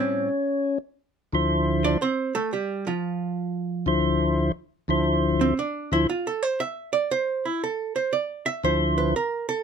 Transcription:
0.00 0.27 A2 medium
0.00 0.27 G3 soft
0.00 0.28 C4 medium
0.00 0.28 C#4 medium
0.00 0.78 C#4 medium
1.33 1.97 D2 medium
1.33 1.97 D3 medium
1.33 1.97 F3 medium
1.33 1.98 E4 medium
1.33 1.98 C5 medium
1.84 2.01 D4 medium
1.84 2.00 D5 medium
2.02 2.35 C4 medium
2.02 2.34 C5 medium
2.35 2.51 A3 medium
2.35 2.51 A4 medium
2.53 2.85 G3 medium
2.53 2.85 G4 medium
2.87 4.01 F3 medium
2.87 4.01 F4 medium
3.86 4.51 D2 medium
3.86 4.51 D3 medium
3.86 4.52 F3 medium
3.86 4.52 E4 medium
3.86 4.52 C5 medium
4.88 5.53 D2 medium
4.88 5.54 D3 medium
4.88 5.54 F3 medium
4.88 5.54 E4 medium
4.88 5.54 C5 medium
5.41 5.57 C4 medium
5.59 5.91 D4 medium
5.92 6.07 D2 medium
5.92 6.07 D3 medium
5.92 6.07 F3 medium
5.92 6.07 E4 medium
5.92 6.08 E4 medium
5.92 6.07 C5 medium
6.10 6.25 F4 medium
6.27 6.43 A4 medium
6.43 6.59 C5 medium
6.60 6.92 E5 medium
6.93 7.09 D5 medium
7.11 7.44 C5 medium
7.45 7.61 E4 medium
7.64 7.95 A4 medium
7.96 8.12 C5 medium
8.13 8.45 D5 medium
8.46 8.62 E5 medium
8.64 9.14 D2 medium
8.64 9.14 D3 medium
8.64 9.15 F3 soft
8.64 9.15 E4 medium
8.64 8.97 C5 medium
8.64 9.15 C5 medium
8.98 9.14 B4 medium
9.16 9.48 A#4 medium
9.49 9.63 A4 medium

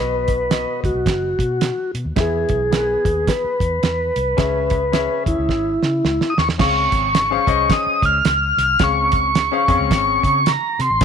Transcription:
0.00 0.64 B1 loud
0.00 0.80 B2 medium
0.00 0.35 B3 medium
0.00 0.35 F#4 medium
0.00 0.80 B4 loud
0.00 0.35 D#5 medium
0.28 kick medium
0.28 closed hi-hat medium
0.50 1.26 B3 medium
0.50 1.26 F#4 medium
0.50 1.26 D#5 medium
0.50 snare loud
0.50 closed hi-hat medium
0.83 0.93 C#2 medium
0.83 1.91 F#4 medium
0.83 kick medium
0.83 closed hi-hat medium
0.94 1.03 B1 medium
1.06 1.33 F#1 medium
1.06 kick medium
1.06 snare loud
1.06 closed hi-hat medium
1.38 1.70 B2 loud
1.38 kick medium
1.38 closed hi-hat medium
1.61 snare loud
1.61 closed hi-hat medium
1.94 2.04 B2 medium
1.94 closed hi-hat medium
2.05 2.14 D#2 medium
2.16 2.43 E2 loud
2.16 3.01 E3 medium
2.16 2.56 B3 medium
2.16 2.57 G#4 medium
2.16 2.57 E5 medium
2.16 kick loud
2.16 snare loud
2.16 closed hi-hat medium
2.20 3.33 G#4 loud
2.49 2.95 B1 medium
2.49 kick medium
2.49 closed hi-hat medium
2.71 3.47 B3 medium
2.71 3.47 G#4 medium
2.71 2.80 A#4 medium
2.71 snare loud
2.71 closed hi-hat medium
2.79 3.51 B4 medium
3.05 3.23 D#2 medium
3.05 kick loud
3.05 closed hi-hat medium
3.27 5.24 B4 loud
3.27 kick medium
3.27 snare loud
3.27 closed hi-hat medium
3.44 muted fingered electric bass stroke soft
3.60 3.79 E2 medium
3.60 kick medium
3.60 closed hi-hat medium
3.83 4.10 E2 medium
3.83 snare loud
3.83 closed hi-hat medium
4.16 4.34 C2 loud
4.16 closed hi-hat medium
4.37 5.07 C#2 medium
4.37 5.23 C#3 medium
4.37 4.77 C#4 medium
4.37 4.78 G#4 medium
4.37 4.78 E5 loud
4.37 kick loud
4.37 snare loud
4.37 closed hi-hat medium
4.70 kick medium
4.70 closed hi-hat medium
4.92 5.68 C#4 medium
4.92 5.69 G#4 medium
4.92 5.69 E5 medium
4.92 snare loud
4.92 closed hi-hat medium
5.26 5.36 D#2 medium
5.26 6.34 E4 medium
5.26 kick medium
5.26 closed hi-hat medium
5.38 5.47 C#2 medium
5.49 5.76 G#1 medium
5.49 kick medium
5.49 snare medium
5.83 6.01 C#3 medium
5.83 snare medium
6.04 6.18 C#2 medium
6.04 snare medium
6.21 snare medium
6.30 6.38 D#6 medium
6.37 6.47 D#2 medium
6.37 6.48 C#6 medium
6.37 snare loud
6.48 6.57 E2 medium
6.48 snare medium
6.58 6.86 C#2 loud
6.58 7.44 C#3 medium
6.58 7.06 C4 medium
6.58 7.06 C#4 medium
6.58 7.06 G#4 medium
6.58 7.07 F5 medium
6.58 7.74 C#6 loud
6.58 kick loud
6.58 snare loud
6.58 crash loud
6.92 7.37 G#1 medium
6.92 kick loud
6.92 closed hi-hat medium
7.15 snare loud
7.15 closed hi-hat medium
7.31 7.42 C#4 medium
7.31 7.42 G#4 medium
7.31 7.42 C5 medium
7.31 7.43 F5 loud
7.46 7.66 C2 loud
7.46 8.16 C#4 medium
7.46 8.16 G#4 medium
7.46 8.16 C5 medium
7.46 8.17 D#5 loud
7.46 kick loud
7.46 closed hi-hat medium
7.70 8.05 D#6 loud
7.70 kick medium
7.70 snare loud
7.70 closed hi-hat medium
7.86 muted fingered electric bass stroke soft
8.02 8.21 C#2 loud
8.02 8.84 F6 loud
8.02 kick medium
8.02 closed hi-hat medium
8.24 8.52 C#2 medium
8.24 snare loud
8.24 closed hi-hat loud
8.57 8.76 C2 loud
8.57 snare soft
8.57 closed hi-hat medium
8.79 9.48 C#2 loud
8.79 9.65 C#3 medium
8.79 9.27 C4 medium
8.79 9.27 C#4 medium
8.79 9.27 G#4 medium
8.79 9.28 F5 medium
8.79 kick loud
8.79 snare loud
8.79 closed hi-hat loud
8.84 10.52 C#6 loud
9.12 kick medium
9.12 closed hi-hat medium
9.35 snare loud
9.35 closed hi-hat medium
9.52 9.62 C#4 medium
9.52 9.63 G#4 medium
9.52 9.63 C5 medium
9.52 9.63 F5 loud
9.68 9.77 F2 loud
9.68 10.37 C4 medium
9.68 10.37 C#4 loud
9.68 10.37 G#4 medium
9.68 10.37 F5 loud
9.68 kick loud
9.68 closed hi-hat medium
9.79 9.88 C#2 medium
9.91 10.17 G#1 loud
9.91 kick medium
9.91 snare loud
9.91 closed hi-hat medium
10.23 10.55 C#3 loud
10.23 kick medium
10.23 closed hi-hat medium
10.46 10.81 A#5 loud
10.46 snare loud
10.46 closed hi-hat medium
10.79 10.88 C3 loud
10.79 11.03 C6 medium
10.79 snare soft
10.79 closed hi-hat medium
10.90 10.99 A1 loud
11.01 11.05 A#2 medium
11.01 11.05 C#4 medium
11.01 11.05 G#4 medium
11.01 kick loud
11.01 snare loud
11.01 closed hi-hat loud

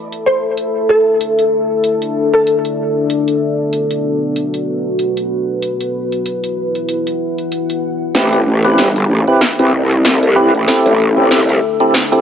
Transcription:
0.00 4.12 A4 medium
0.00 3.10 E5 medium
0.00 1.59 B5 medium
0.12 closed hi-hat soft
0.26 0.52 C5 medium
0.57 4.12 D4 medium
0.57 closed hi-hat medium
0.89 1.39 A4 medium
1.21 closed hi-hat medium
1.39 closed hi-hat soft
1.84 closed hi-hat medium
2.02 closed hi-hat soft
2.33 2.79 A4 medium
2.47 closed hi-hat medium
2.65 closed hi-hat soft
3.10 6.64 B3 medium
3.10 closed hi-hat medium
3.17 6.65 F#4 medium
3.28 closed hi-hat soft
3.73 closed hi-hat medium
3.91 closed hi-hat soft
4.08 9.17 B4 medium
4.36 closed hi-hat medium
4.54 closed hi-hat soft
4.99 closed hi-hat medium
5.17 closed hi-hat soft
5.62 9.17 E4 medium
5.62 closed hi-hat medium
5.81 closed hi-hat soft
6.12 closed hi-hat soft
6.26 closed hi-hat medium
6.44 closed hi-hat soft
6.49 9.14 F#5 medium
6.75 closed hi-hat soft
6.89 closed hi-hat medium
7.07 closed hi-hat soft
7.38 closed hi-hat soft
7.52 closed hi-hat medium
7.70 closed hi-hat soft
8.15 8.44 A1 medium
8.15 8.41 C4 medium
8.15 8.41 E4 medium
8.15 8.41 G4 medium
8.15 12.21 A4 medium
8.15 8.41 B4 medium
8.15 snare soft
8.15 closed hi-hat medium
8.33 closed hi-hat medium
8.46 8.76 A1 loud
8.51 12.21 E5 medium
8.64 8.89 C4 medium
8.64 8.89 E4 medium
8.64 8.89 G4 medium
8.64 8.89 B4 medium
8.64 closed hi-hat soft
8.78 9.07 G1 medium
8.78 snare soft
8.78 closed hi-hat medium
8.84 11.70 B5 medium
8.96 closed hi-hat soft
9.09 9.25 A1 medium
9.28 9.41 C4 medium
9.28 9.41 E4 medium
9.28 9.41 G4 medium
9.28 9.41 B4 medium
9.41 snare soft
9.41 closed hi-hat medium
9.59 10.51 C2 medium
9.59 9.73 C4 medium
9.59 9.73 E4 medium
9.59 9.73 G4 medium
9.59 9.73 B4 loud
9.59 closed hi-hat soft
9.91 closed hi-hat soft
10.05 snare medium
10.05 closed hi-hat medium
10.23 closed hi-hat soft
10.36 10.54 C4 medium
10.36 10.54 E4 medium
10.36 10.54 G4 medium
10.36 10.54 B4 loud
10.54 10.65 A1 medium
10.54 closed hi-hat soft
10.67 10.94 C4 medium
10.67 12.21 D4 medium
10.67 10.94 E4 medium
10.67 10.94 G4 medium
10.67 10.94 A4 medium
10.67 snare medium
10.67 closed hi-hat medium
10.86 11.29 A1 medium
10.86 closed hi-hat medium
11.17 11.41 C4 medium
11.17 11.41 E4 medium
11.17 11.41 G4 medium
11.17 11.41 A4 medium
11.30 11.60 C2 medium
11.30 snare medium
11.30 closed hi-hat medium
11.49 closed hi-hat medium
11.80 11.94 C4 medium
11.80 11.94 E4 medium
11.80 11.94 G4 medium
11.80 11.94 A4 medium
11.94 snare medium
11.94 closed hi-hat medium
12.12 12.21 C4 medium
12.12 12.21 E4 medium
12.12 12.21 G4 medium
12.12 12.21 A4 loud
12.12 closed hi-hat medium

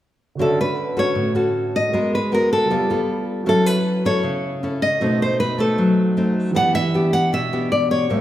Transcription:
0.35 1.88 D3 soft
0.35 1.14 D3 medium
0.35 0.93 C#4 soft
0.35 1.89 F#4 soft
0.35 1.90 A4 soft
0.40 0.94 F#4 soft
0.40 0.94 A4 medium
0.40 0.58 A4 medium
0.40 1.90 C#5 soft
0.40 1.91 E5 soft
0.61 0.99 B4 medium
0.97 1.32 C#4 medium
0.97 1.32 F#4 medium
0.97 1.32 A4 medium
0.97 1.71 C#5 medium
1.15 1.90 A2 medium
1.35 1.90 C#4 soft
1.35 1.90 F#4 medium
1.35 1.90 A4 medium
1.76 2.14 D#5 medium
1.89 2.66 G#3 soft
1.89 2.67 F#4 soft
1.89 2.68 A#4 soft
1.93 2.68 G#3 medium
1.93 2.18 B3 soft
1.93 2.18 F#4 soft
1.93 2.18 A#4 soft
1.93 2.69 D#5 soft
2.15 2.33 B4 medium
2.32 2.69 B3 medium
2.32 2.69 F#4 soft
2.32 2.69 A#4 soft
2.32 2.52 A#4 medium
2.53 3.25 A4 medium
2.66 3.43 G3 soft
2.66 3.44 F4 soft
2.66 3.44 A4 soft
2.70 3.45 G3 medium
2.70 2.86 B3 medium
2.70 2.86 F4 soft
2.70 2.86 A4 medium
2.70 3.45 B4 soft
2.70 3.46 D5 soft
2.90 3.44 B3 soft
2.90 3.44 F4 soft
2.90 3.44 A4 medium
3.44 4.21 F#3 medium
3.44 4.01 C#4 medium
3.44 4.01 E4 medium
3.44 4.96 F#4 soft
3.44 4.97 A4 soft
3.44 4.01 A4 soft
3.44 4.98 C#5 soft
3.49 3.66 A4 medium
3.49 4.99 E5 soft
3.66 4.06 B4 medium
4.05 4.59 C#4 soft
4.05 4.60 E4 soft
4.05 4.60 A4 medium
4.05 4.82 C#5 medium
4.24 4.99 C#3 medium
4.63 4.88 C#4 soft
4.63 4.88 E4 soft
4.63 4.88 A4 medium
4.82 5.22 D#5 medium
5.00 5.76 B2 medium
5.00 5.56 A3 soft
5.00 5.56 C4 soft
5.00 5.56 D#4 medium
5.00 6.51 F#4 soft
5.00 6.52 A4 soft
5.00 6.53 C5 soft
5.04 6.54 D#5 soft
5.22 5.39 C5 medium
5.40 5.60 B4 medium
5.58 6.13 A3 soft
5.58 6.14 C4 soft
5.58 6.14 D#4 medium
5.58 6.33 A4 medium
5.78 6.53 F#3 medium
6.17 6.52 A3 soft
6.17 6.53 C4 soft
6.17 6.52 D#4 soft
6.51 8.04 E3 soft
6.51 7.30 E3 medium
6.51 6.80 B3 soft
6.51 6.80 D4 soft
6.51 8.05 G4 soft
6.51 8.06 B4 soft
6.56 6.80 G4 soft
6.56 8.07 D5 soft
6.56 6.74 F#5 medium
6.56 8.08 F#5 soft
6.75 7.13 E5 medium
6.94 7.49 B3 soft
6.94 7.49 D4 soft
6.94 7.49 G4 medium
7.13 7.33 F#5 medium
7.33 8.08 B2 medium
7.33 7.71 E5 medium
7.53 8.07 B3 medium
7.53 8.07 D4 soft
7.53 8.07 G4 medium
7.72 7.91 D5 medium
7.91 8.21 C#5 medium
8.09 8.21 A2 medium
8.09 8.21 G3 soft
8.09 8.21 A#3 soft
8.09 8.21 C#4 medium
8.09 8.21 G4 soft
8.09 8.21 A#4 soft
8.09 8.21 C#5 soft
8.13 8.21 E5 soft

